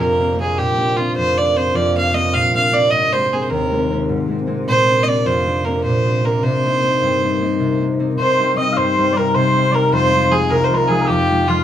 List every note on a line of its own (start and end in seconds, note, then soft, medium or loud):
0.00 0.62 F2 medium
0.00 1.15 C3 medium
0.00 0.19 A#3 soft
0.00 0.20 C4 soft
0.00 0.20 D4 soft
0.00 0.39 A#4 medium
0.20 0.35 A#3 soft
0.20 0.38 C4 soft
0.20 0.40 D4 medium
0.36 0.77 A#3 soft
0.36 0.78 C4 soft
0.41 0.77 D4 medium
0.41 0.60 G#4 medium
0.58 1.21 A#2 medium
0.58 0.98 G4 medium
0.77 0.97 A#3 soft
0.77 0.97 C4 soft
0.77 0.98 D4 soft
0.96 1.37 A#3 soft
0.96 1.38 C4 soft
0.96 1.39 D4 medium
0.96 1.15 F4 medium
1.16 1.74 F2 medium
1.16 8.18 C3 medium
1.16 1.39 C5 medium
1.37 1.53 A#3 soft
1.37 1.55 C4 soft
1.37 1.58 D4 soft
1.37 1.58 D5 medium
1.53 1.95 A#3 soft
1.53 1.96 C4 soft
1.53 1.77 C5 medium
1.59 1.96 D4 soft
1.75 2.38 F2 medium
1.75 1.96 D5 medium
1.95 2.13 A#3 soft
1.95 2.13 C4 soft
1.95 2.14 D4 soft
1.95 2.16 F5 medium
2.13 2.53 A#3 soft
2.13 2.54 C4 soft
2.13 2.55 D4 medium
2.13 2.35 D#5 medium
2.34 2.96 A#2 medium
2.34 2.54 F5 medium
2.54 2.72 A#3 soft
2.54 2.72 C4 soft
2.54 2.72 D4 soft
2.54 2.75 F5 medium
2.72 3.13 A#3 medium
2.72 3.13 C4 soft
2.72 3.57 D4 soft
2.72 2.92 D5 medium
2.91 3.55 G#2 medium
2.91 3.14 D#5 medium
3.12 3.31 G#3 soft
3.12 3.32 A#3 soft
3.12 3.32 C4 soft
3.12 3.34 C5 medium
3.32 3.70 G#3 soft
3.32 3.72 A#3 soft
3.32 3.74 C4 soft
3.32 3.43 G#4 medium
3.42 3.52 C5 soft
3.50 4.13 D#2 medium
3.50 3.95 A#4 medium
3.70 3.90 G#3 soft
3.70 3.90 A#3 soft
3.74 3.91 C4 medium
3.91 4.28 G#3 soft
3.91 4.29 A#3 soft
3.91 4.31 C4 soft
4.09 4.72 G#2 medium
4.28 4.45 G#3 soft
4.28 4.47 A#3 soft
4.28 4.47 C4 soft
4.47 4.72 G#3 soft
4.47 4.87 A#3 soft
4.47 4.88 C4 medium
4.67 5.30 A#2 medium
4.67 5.05 C5 loud
4.87 5.06 A#3 soft
4.87 5.07 C4 soft
4.87 5.07 D4 soft
5.03 5.46 A#3 soft
5.03 5.47 C4 soft
5.03 5.09 D#5 medium
5.08 5.47 D4 soft
5.08 5.28 D5 medium
5.25 5.89 F2 medium
5.25 5.66 C5 medium
5.47 5.65 A#3 soft
5.47 5.66 C4 soft
5.47 5.67 D4 soft
5.65 6.04 A#3 soft
5.65 6.05 C4 soft
5.65 6.06 D4 soft
5.65 5.84 A#4 medium
5.84 6.47 A#2 medium
5.84 6.27 C5 medium
6.04 6.23 A#3 soft
6.04 6.24 C4 soft
6.04 6.24 D4 soft
6.24 6.65 A#3 soft
6.24 6.65 C4 soft
6.24 6.73 D4 medium
6.24 6.45 A#4 medium
6.43 7.06 C3 medium
6.43 7.81 C5 medium
6.65 6.83 A#3 soft
6.65 6.84 C4 soft
6.65 6.84 D#4 soft
6.83 7.21 A#3 soft
6.83 7.23 C4 soft
6.83 7.25 D#4 soft
7.02 7.64 G2 medium
7.22 7.41 A#3 soft
7.22 7.41 C4 soft
7.22 7.42 D#4 soft
7.41 7.80 A#3 soft
7.41 7.81 C4 soft
7.41 7.81 D#4 medium
7.59 8.18 C3 medium
7.81 7.99 A#3 soft
7.81 7.99 C4 soft
7.81 8.00 D#4 soft
7.99 11.21 A#3 soft
7.99 8.39 C4 soft
7.99 8.39 D#4 medium
8.18 11.64 C3 medium
8.18 8.81 C3 medium
8.18 8.57 C5 medium
8.18 8.55 C5 medium
8.39 8.56 G3 soft
8.39 8.58 C4 soft
8.39 8.58 D#4 soft
8.57 8.97 G3 soft
8.57 8.98 C4 soft
8.57 8.99 D#4 medium
8.57 8.73 D#5 medium
8.57 8.79 D#5 medium
8.73 8.77 F5 medium
8.77 9.39 G2 medium
8.77 9.13 C5 medium
8.77 9.19 C5 medium
8.98 9.15 G3 soft
8.98 9.16 C4 soft
8.98 9.17 D#4 soft
9.13 9.53 G3 soft
9.13 9.55 C4 soft
9.13 9.35 A#4 medium
9.13 9.16 D5 medium
9.17 9.56 D#4 medium
9.17 9.27 A#4 medium
9.27 9.36 A#4 medium
9.34 9.97 C3 medium
9.34 9.75 C5 medium
9.34 9.71 C5 medium
9.53 9.72 G3 soft
9.53 9.73 C4 soft
9.53 9.74 D#4 soft
9.71 9.97 G3 medium
9.71 11.64 C4 medium
9.71 10.14 D#4 medium
9.71 9.92 A#4 medium
9.71 9.94 A#4 medium
9.71 9.75 D5 medium
9.92 10.55 F2 medium
9.92 10.32 C5 medium
9.92 10.33 C5 loud
10.11 10.30 F3 soft
10.11 10.30 G#3 soft
10.11 10.31 D#4 medium
10.31 10.70 F3 soft
10.31 10.71 G#3 soft
10.31 10.72 D#4 medium
10.31 10.52 G#4 medium
10.31 10.51 G#4 medium
10.50 11.14 C2 medium
10.50 10.66 A#4 medium
10.50 10.74 A#4 medium
10.64 10.76 C5 medium
10.71 10.89 F3 soft
10.71 10.89 G#3 soft
10.71 10.91 D#4 medium
10.71 10.89 A#4 medium
10.71 10.78 C5 medium
10.78 10.91 A#4 medium
10.87 11.29 F3 soft
10.87 11.29 G#3 soft
10.87 11.09 G#4 medium
10.91 11.31 D#4 medium
10.91 11.01 G#4 medium
11.01 11.10 G#4 medium
11.01 11.05 A#4 medium
11.07 11.64 F2 medium
11.07 11.49 G4 medium
11.07 11.50 G4 medium
11.30 11.48 F3 soft
11.30 11.48 G#3 soft
11.30 11.50 D#4 soft
11.48 11.64 F3 medium
11.48 11.64 G#3 soft
11.48 11.64 D#4 medium
11.48 11.64 F4 medium